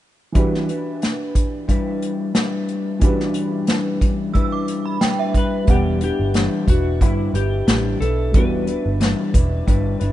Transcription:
0.32 E3 G3 D4 E4 F#4 B4, kick, closed hi-hat
0.37 G4 B4
0.54 snare
0.68 D4 E4 B4, closed hi-hat
1.02 snare, closed hi-hat
1.35 kick, closed hi-hat
1.68 G3 D4 E4 B4, kick, closed hi-hat
2.02 closed hi-hat
2.34 G3 D4 E4 B4, snare, closed hi-hat
2.69 closed hi-hat
2.99 E3 G3 D4 E4 F#4, kick, closed hi-hat
3.03 G4 B4
3.20 snare
3.34 closed hi-hat
3.67 snare, closed hi-hat
4.01 kick, closed hi-hat
4.34 G3 D4 E4 B4 E6, kick, closed hi-hat
4.52 D6
4.68 closed hi-hat
4.85 B5
5.01 G3 D4 E4 B4 G5, snare, closed hi-hat
5.19 E5
5.34 B4, kick, closed hi-hat
5.65 E1 E3 G3 B3 D4, kick, closed hi-hat
5.69 E4 G4 B4 F#5
6.01 D4 E4 G4 B4, closed hi-hat
6.20 G1
6.34 E3 G3 D4 E4 B4, snare, closed hi-hat
6.67 E1 D4 E4 F#4 B4, kick, closed hi-hat
7.00 G1 G3 D4 E4 B4, kick, closed hi-hat
7.34 G1 D4 E4 G4 B4, closed hi-hat
7.67 A1 E3 G3 D4 E4 B4, snare, closed hi-hat
8.01 B1 D4 E4 A4 B4, closed hi-hat
8.32 E1 E3 G3 B3 D4 B4, kick, closed hi-hat
8.36 E4 F#4 B4
8.67 D4 E4 B4, closed hi-hat
8.86 G1
9.00 E3 G3 D4 E4 B4, snare, closed hi-hat
9.34 E1 D4 E4 B4, kick, closed hi-hat
9.67 G1 G3 D4 E4 B4, kick, closed hi-hat
10.00 G1 D4 E4 B4, closed hi-hat

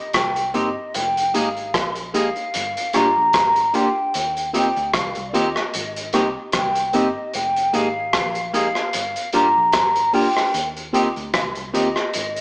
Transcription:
Already playing: D#5
0.13 C2 G5, kick, cross-stick, closed hi-hat
0.36 closed hi-hat
0.54 G1 A#3 C4 D#4 G4 D#5, closed hi-hat
0.94 F1 G5, closed hi-hat
1.17 closed hi-hat
1.34 G#1 G#3 A#3 D#4 G4 G#4 F5, closed hi-hat
1.57 closed hi-hat
1.74 A#1, kick, cross-stick, closed hi-hat
1.96 closed hi-hat
2.14 G#3 A#3 D#4 G4 G#4 F5, closed hi-hat
2.36 D#4 G4, closed hi-hat
2.54 G1, closed hi-hat
2.77 closed hi-hat
2.93 G1 A#3 D4 F4 G4 A#5, cross-stick, closed hi-hat
3.18 A#1
3.33 G1, kick, cross-stick, closed hi-hat
3.56 closed hi-hat
3.74 A#3 D4 F4 G4 G5, closed hi-hat
4.14 D#2, closed hi-hat
4.37 closed hi-hat
4.53 A#3 C4 D#4 F4 G4 G5, closed hi-hat
4.76 D2, closed hi-hat
4.94 C2 F5, kick, cross-stick, closed hi-hat
5.15 C2, closed hi-hat
5.29 D5
5.33 D#2 A#3 C4 D#4 F4 G4 D#5, closed hi-hat
5.55 F4 G4, cross-stick
5.74 G#1, closed hi-hat
5.96 closed hi-hat
6.13 C2 A#3 C4 D#4 G4, cross-stick, closed hi-hat
6.52 C2 G5, kick, cross-stick, closed hi-hat
6.75 closed hi-hat
6.93 G1 A#3 C4 D#4 G4 D#5, closed hi-hat
7.34 F1 G5, closed hi-hat
7.56 closed hi-hat
7.73 G#1 G#3 A#3 D#4 G4 G#4 F5, closed hi-hat
8.13 A#1, kick, cross-stick, closed hi-hat
8.35 closed hi-hat
8.53 G#3 A#3 D#4 G4 G#4 F5, closed hi-hat
8.75 D#4 G4, cross-stick
8.93 G1, closed hi-hat
9.16 closed hi-hat
9.33 G1 A#3 D4 F4 G4 A#5, closed hi-hat
9.57 A#1
9.72 G1, kick, cross-stick, closed hi-hat
9.96 closed hi-hat
10.13 A#3 D4 F4 G4 G5, open hi-hat
10.37 cross-stick
10.54 D#2, closed hi-hat
10.77 closed hi-hat
10.93 A#3 C4 D#4 F4 G4 G5, closed hi-hat
11.16 D2, closed hi-hat
11.34 C2 F5, kick, cross-stick, closed hi-hat
11.55 C2, closed hi-hat
11.73 D#2 A#3 C4 D#4 F4 G4 D#5, closed hi-hat
11.96 cross-stick
12.13 G#1, closed hi-hat
12.36 closed hi-hat

